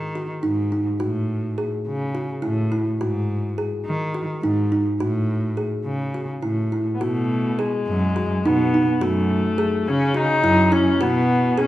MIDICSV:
0, 0, Header, 1, 4, 480
1, 0, Start_track
1, 0, Tempo, 568182
1, 861, Time_signature, 7, 3, 24, 8
1, 3978, Tempo, 576369
1, 7338, Tempo, 565504
1, 9824, End_track
2, 0, Start_track
2, 0, Title_t, "Kalimba"
2, 0, Program_c, 0, 108
2, 130, Note_on_c, 0, 66, 57
2, 343, Note_off_c, 0, 66, 0
2, 363, Note_on_c, 0, 63, 64
2, 579, Note_off_c, 0, 63, 0
2, 608, Note_on_c, 0, 63, 56
2, 822, Note_off_c, 0, 63, 0
2, 844, Note_on_c, 0, 66, 75
2, 1266, Note_off_c, 0, 66, 0
2, 1334, Note_on_c, 0, 68, 62
2, 1749, Note_off_c, 0, 68, 0
2, 1814, Note_on_c, 0, 66, 60
2, 2021, Note_off_c, 0, 66, 0
2, 2047, Note_on_c, 0, 64, 67
2, 2257, Note_off_c, 0, 64, 0
2, 2296, Note_on_c, 0, 64, 61
2, 2503, Note_off_c, 0, 64, 0
2, 2542, Note_on_c, 0, 66, 75
2, 2955, Note_off_c, 0, 66, 0
2, 3024, Note_on_c, 0, 68, 63
2, 3437, Note_off_c, 0, 68, 0
2, 3501, Note_on_c, 0, 66, 63
2, 3708, Note_off_c, 0, 66, 0
2, 3746, Note_on_c, 0, 63, 66
2, 3951, Note_off_c, 0, 63, 0
2, 3987, Note_on_c, 0, 63, 61
2, 4190, Note_off_c, 0, 63, 0
2, 4224, Note_on_c, 0, 66, 78
2, 4634, Note_off_c, 0, 66, 0
2, 4697, Note_on_c, 0, 68, 57
2, 5110, Note_off_c, 0, 68, 0
2, 5173, Note_on_c, 0, 66, 54
2, 5382, Note_off_c, 0, 66, 0
2, 5407, Note_on_c, 0, 64, 59
2, 5620, Note_off_c, 0, 64, 0
2, 5655, Note_on_c, 0, 64, 54
2, 5865, Note_off_c, 0, 64, 0
2, 5894, Note_on_c, 0, 66, 77
2, 6314, Note_off_c, 0, 66, 0
2, 6376, Note_on_c, 0, 68, 60
2, 6794, Note_off_c, 0, 68, 0
2, 6852, Note_on_c, 0, 66, 62
2, 7062, Note_off_c, 0, 66, 0
2, 7098, Note_on_c, 0, 63, 69
2, 7304, Note_off_c, 0, 63, 0
2, 7336, Note_on_c, 0, 63, 64
2, 7545, Note_off_c, 0, 63, 0
2, 7568, Note_on_c, 0, 66, 81
2, 7988, Note_off_c, 0, 66, 0
2, 8049, Note_on_c, 0, 68, 68
2, 8468, Note_off_c, 0, 68, 0
2, 8527, Note_on_c, 0, 66, 68
2, 8739, Note_off_c, 0, 66, 0
2, 8776, Note_on_c, 0, 64, 75
2, 8984, Note_off_c, 0, 64, 0
2, 9015, Note_on_c, 0, 64, 67
2, 9224, Note_off_c, 0, 64, 0
2, 9259, Note_on_c, 0, 66, 85
2, 9674, Note_off_c, 0, 66, 0
2, 9742, Note_on_c, 0, 68, 68
2, 9824, Note_off_c, 0, 68, 0
2, 9824, End_track
3, 0, Start_track
3, 0, Title_t, "Viola"
3, 0, Program_c, 1, 41
3, 5840, Note_on_c, 1, 59, 43
3, 5895, Note_on_c, 1, 57, 67
3, 5907, Note_off_c, 1, 59, 0
3, 6376, Note_on_c, 1, 56, 74
3, 6388, Note_off_c, 1, 57, 0
3, 7102, Note_on_c, 1, 59, 75
3, 7114, Note_off_c, 1, 56, 0
3, 7567, Note_on_c, 1, 57, 81
3, 7580, Note_off_c, 1, 59, 0
3, 8306, Note_on_c, 1, 61, 86
3, 8319, Note_off_c, 1, 57, 0
3, 8541, Note_off_c, 1, 61, 0
3, 8556, Note_on_c, 1, 63, 97
3, 9021, Note_on_c, 1, 61, 85
3, 9034, Note_off_c, 1, 63, 0
3, 9264, Note_on_c, 1, 59, 86
3, 9277, Note_off_c, 1, 61, 0
3, 9747, Note_on_c, 1, 61, 82
3, 9760, Note_off_c, 1, 59, 0
3, 9824, Note_off_c, 1, 61, 0
3, 9824, End_track
4, 0, Start_track
4, 0, Title_t, "Cello"
4, 0, Program_c, 2, 42
4, 0, Note_on_c, 2, 51, 70
4, 261, Note_off_c, 2, 51, 0
4, 373, Note_on_c, 2, 44, 73
4, 740, Note_off_c, 2, 44, 0
4, 861, Note_on_c, 2, 45, 67
4, 1404, Note_off_c, 2, 45, 0
4, 1584, Note_on_c, 2, 49, 77
4, 1943, Note_off_c, 2, 49, 0
4, 2060, Note_on_c, 2, 45, 78
4, 2421, Note_off_c, 2, 45, 0
4, 2540, Note_on_c, 2, 44, 72
4, 3084, Note_off_c, 2, 44, 0
4, 3257, Note_on_c, 2, 51, 80
4, 3621, Note_off_c, 2, 51, 0
4, 3738, Note_on_c, 2, 44, 78
4, 4102, Note_off_c, 2, 44, 0
4, 4223, Note_on_c, 2, 45, 74
4, 4762, Note_off_c, 2, 45, 0
4, 4931, Note_on_c, 2, 49, 72
4, 5296, Note_off_c, 2, 49, 0
4, 5410, Note_on_c, 2, 45, 70
4, 5779, Note_off_c, 2, 45, 0
4, 5902, Note_on_c, 2, 47, 72
4, 6448, Note_off_c, 2, 47, 0
4, 6621, Note_on_c, 2, 42, 88
4, 6983, Note_off_c, 2, 42, 0
4, 7100, Note_on_c, 2, 47, 82
4, 7461, Note_off_c, 2, 47, 0
4, 7577, Note_on_c, 2, 42, 75
4, 8122, Note_off_c, 2, 42, 0
4, 8297, Note_on_c, 2, 49, 93
4, 8660, Note_off_c, 2, 49, 0
4, 8775, Note_on_c, 2, 42, 90
4, 9139, Note_off_c, 2, 42, 0
4, 9256, Note_on_c, 2, 47, 84
4, 9801, Note_off_c, 2, 47, 0
4, 9824, End_track
0, 0, End_of_file